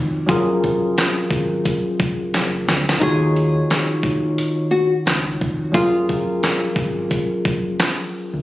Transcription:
0.00 0.26 F1 medium
0.00 0.24 D#3 medium
0.00 0.24 D#4 medium
0.00 0.25 F4 medium
0.00 0.25 F#4 medium
0.00 0.26 C#5 medium
0.26 0.59 F#1 loud
0.26 2.96 F#3 medium
0.26 2.97 C#4 medium
0.26 2.97 F4 medium
0.26 2.98 G#4 medium
0.26 kick loud
0.26 closed hi-hat medium
0.31 2.99 A#4 medium
0.64 0.94 F#1 medium
0.64 kick loud
0.64 closed hi-hat medium
0.64 shaker medium
0.98 snare loud
0.98 clap medium
0.98 closed hi-hat medium
1.18 muted fingered electric bass stroke soft
1.31 1.61 G#1 medium
1.31 kick loud
1.31 shaker medium
1.65 kick medium
1.65 closed hi-hat loud
2.00 2.30 F#1 medium
2.00 kick loud
2.00 shaker soft
2.33 2.63 F#1 medium
2.33 snare medium
2.33 closed hi-hat medium
2.68 2.98 D2 medium
2.68 snare medium
2.68 shaker medium
2.89 snare loud
2.99 3.62 D#2 loud
2.99 5.69 D#3 medium
2.99 5.70 D#4 medium
2.99 5.70 F4 medium
2.99 5.71 F#4 medium
2.99 4.35 G#4 loud
2.99 kick loud
2.99 closed hi-hat medium
3.04 5.71 C#5 medium
3.36 closed hi-hat medium
3.70 snare loud
3.70 clap medium
3.70 closed hi-hat medium
4.03 4.34 A#1 medium
4.03 kick medium
4.38 closed hi-hat loud
4.71 4.90 F#4 medium
5.06 5.36 C#2 loud
5.06 snare loud
5.06 clap medium
5.06 closed hi-hat medium
5.41 5.71 F1 medium
5.41 kick medium
5.72 6.04 F#1 loud
5.72 8.42 F#3 medium
5.72 8.42 C#4 medium
5.72 8.42 F4 medium
5.72 7.27 F4 loud
5.72 8.42 G#4 medium
5.72 kick loud
5.72 closed hi-hat medium
5.77 8.42 A#4 medium
6.09 6.39 F#1 medium
6.09 kick loud
6.09 closed hi-hat medium
6.43 snare loud
6.43 clap medium
6.43 closed hi-hat medium
6.63 muted fingered electric bass stroke soft
6.76 7.06 G#1 medium
6.76 kick loud
7.11 kick medium
7.11 closed hi-hat medium
7.45 7.75 F#1 medium
7.45 kick loud
7.80 snare loud
7.80 clap loud
7.80 closed hi-hat medium
8.33 8.42 D2 medium

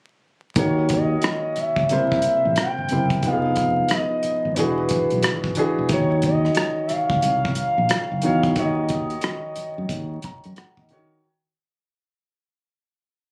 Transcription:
0.56 1.16 D#2 loud
0.56 1.63 D#3 medium
0.56 1.64 A#3 medium
0.56 1.64 F#4 medium
0.56 1.65 C#5 medium
0.56 0.89 C#5 medium
0.56 kick loud
0.56 closed hi-hat medium
0.89 kick medium
0.89 closed hi-hat medium
0.93 1.61 D#5 medium
1.22 cross-stick loud
1.22 closed hi-hat medium
1.56 2.58 E5 loud
1.56 muted fingered electric bass stroke soft
1.56 cross-stick soft
1.56 closed hi-hat medium
1.76 1.88 C#2 medium
1.76 kick medium
1.89 2.20 C2 medium
1.89 2.73 C3 medium
1.89 2.74 A#3 medium
1.89 2.74 E4 medium
1.89 2.75 C5 medium
1.89 closed hi-hat medium
2.12 kick medium
2.22 closed hi-hat medium
2.45 2.56 A1 medium
2.56 cross-stick medium
2.56 closed hi-hat medium
2.60 3.21 G5 loud
2.78 2.89 G1 medium
2.89 3.20 F#1 medium
2.89 3.18 C3 medium
2.89 3.19 A#3 medium
2.89 3.19 E4 medium
2.89 closed hi-hat medium
2.93 3.19 C5 medium
3.10 kick medium
3.10 closed hi-hat soft
3.23 3.83 F1 medium
3.23 4.30 F3 medium
3.23 4.31 B3 medium
3.23 4.31 D#4 medium
3.23 3.33 G4 medium
3.23 kick loud
3.23 closed hi-hat medium
3.27 3.94 F5 loud
3.33 4.35 G#4 medium
3.56 kick medium
3.56 closed hi-hat medium
3.89 cross-stick loud
3.89 closed hi-hat medium
3.93 4.56 D#5 medium
4.23 muted fingered electric bass stroke soft
4.23 closed hi-hat medium
4.45 4.58 G#1 medium
4.54 4.87 E1 medium
4.54 5.40 E3 medium
4.54 5.40 D4 medium
4.54 4.61 A#4 medium
4.54 closed hi-hat medium
4.58 5.41 F#4 medium
4.58 5.41 G#4 medium
4.58 5.58 B4 medium
4.89 kick medium
4.89 closed hi-hat medium
5.10 5.24 B1 medium
5.10 closed hi-hat soft
5.23 5.53 G#1 medium
5.23 cross-stick loud
5.23 closed hi-hat medium
5.44 kick medium
5.55 5.85 E3 medium
5.55 5.85 D4 medium
5.55 5.85 F#4 medium
5.55 closed hi-hat medium
5.59 5.86 G#4 medium
5.78 5.89 E1 medium
5.89 6.49 D#2 loud
5.89 6.96 D#3 medium
5.89 6.97 D#4 medium
5.89 6.97 F#4 medium
5.89 6.98 C#5 medium
5.89 6.22 C#5 medium
5.89 kick loud
5.89 closed hi-hat medium
6.22 6.88 D#5 medium
6.22 kick medium
6.22 closed hi-hat medium
6.45 cross-stick soft
6.55 cross-stick loud
6.55 closed hi-hat medium
6.87 6.93 E5 medium
6.87 muted fingered electric bass stroke soft
6.87 cross-stick soft
6.87 closed hi-hat medium
6.92 8.24 F5 loud
7.10 7.21 C#2 medium
7.10 kick medium
7.22 7.53 C2 medium
7.22 closed hi-hat medium
7.45 kick medium
7.55 closed hi-hat medium
7.78 7.89 A#1 medium
7.89 cross-stick loud
7.89 closed hi-hat medium
8.12 8.22 F#1 medium
8.22 8.57 E2 medium
8.22 8.51 D#3 medium
8.22 8.52 D#4 medium
8.22 8.52 F#4 medium
8.22 closed hi-hat medium
8.26 8.52 C#5 medium
8.26 8.55 F5 loud
8.43 kick medium
8.43 closed hi-hat soft
8.56 9.16 D#2 loud
8.56 9.63 D#3 medium
8.56 9.64 D#4 medium
8.56 9.64 F#4 medium
8.56 9.64 C#5 medium
8.56 10.54 D#5 medium
8.56 kick loud
8.56 closed hi-hat medium
8.89 kick medium
8.89 closed hi-hat medium
9.10 closed hi-hat soft
9.21 cross-stick loud
9.21 closed hi-hat medium
9.56 muted fingered electric bass stroke soft
9.56 closed hi-hat medium
9.78 9.89 F#2 medium
9.89 10.19 D#2 medium
9.89 kick medium
9.89 closed hi-hat medium
10.22 10.55 A#5 medium
10.22 muted fingered electric bass stroke soft
10.22 kick medium
10.22 closed hi-hat medium
10.44 10.56 F#2 medium
10.44 closed hi-hat soft
10.56 10.77 F#5 medium
10.56 muted fingered electric bass stroke soft
10.56 cross-stick medium
10.56 closed hi-hat medium
10.77 10.93 D#2 medium
10.77 11.21 D#5 medium
10.77 kick medium
10.89 11.18 D#3 medium
10.89 11.20 D#3 medium
10.89 11.19 D#4 medium
10.89 11.19 F#4 medium
10.89 closed hi-hat medium
10.93 11.19 C#5 medium

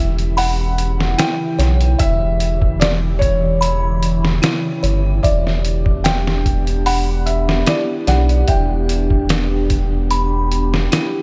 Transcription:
0.00 1.15 E1 medium
0.00 5.20 C#3 medium
0.00 5.20 E3 medium
0.00 1.97 E4 medium
0.00 11.22 G4 medium
0.00 0.34 E5 medium
0.00 0.39 E5 medium
0.19 closed hi-hat soft
0.37 1.21 F#5 loud
0.37 1.14 B5 medium
0.37 open hi-hat medium
0.78 closed hi-hat medium
1.00 snare medium
1.18 1.57 E4 medium
1.18 2.02 G5 loud
1.18 snare loud
1.18 closed hi-hat medium
1.59 1.95 B1 loud
1.59 1.96 C#5 loud
1.59 snare soft
1.59 closed hi-hat medium
1.81 closed hi-hat soft
1.99 4.39 E1 loud
1.99 5.21 E4 medium
1.99 3.57 E5 medium
1.99 2.77 E5 loud
1.99 kick loud
1.99 closed hi-hat medium
2.40 closed hi-hat medium
2.62 kick medium
2.80 2.89 D5 medium
2.80 snare loud
2.80 closed hi-hat medium
3.19 4.78 C#5 loud
3.19 kick medium
3.19 closed hi-hat medium
3.61 4.39 B5 medium
3.61 closed hi-hat medium
4.03 closed hi-hat medium
4.25 snare medium
4.42 4.81 E4 loud
4.42 snare loud
4.42 closed hi-hat medium
4.83 5.19 G1 loud
4.83 5.20 C#5 medium
4.83 closed hi-hat medium
5.23 7.64 E1 loud
5.23 11.22 B3 medium
5.23 11.22 D4 medium
5.23 6.07 D5 medium
5.23 6.82 E5 medium
5.23 kick loud
5.23 closed hi-hat medium
5.47 snare soft
5.65 closed hi-hat medium
5.86 kick medium
6.04 6.88 G5 loud
6.04 snare loud
6.04 closed hi-hat medium
6.27 snare medium
6.46 kick medium
6.46 closed hi-hat medium
6.67 closed hi-hat soft
6.86 7.28 F#5 loud
6.86 7.63 B5 medium
6.86 open hi-hat medium
7.26 7.68 E5 medium
7.26 closed hi-hat medium
7.49 snare medium
7.67 8.06 E4 loud
7.67 8.09 D5 medium
7.67 snare loud
7.67 closed hi-hat medium
8.07 8.44 B1 loud
8.07 8.44 D5 loud
8.07 8.50 F#5 loud
8.07 snare medium
8.07 closed hi-hat medium
8.29 closed hi-hat soft
8.48 10.88 E1 loud
8.48 10.06 E5 medium
8.48 9.26 G5 medium
8.48 kick loud
8.48 closed hi-hat medium
8.89 closed hi-hat medium
9.10 kick loud
9.29 snare loud
9.29 closed hi-hat medium
9.70 kick medium
9.70 closed hi-hat medium
10.11 10.88 B5 medium
10.11 closed hi-hat medium
10.52 closed hi-hat medium
10.74 snare medium
10.92 11.22 E4 medium
10.92 snare loud
10.92 closed hi-hat medium

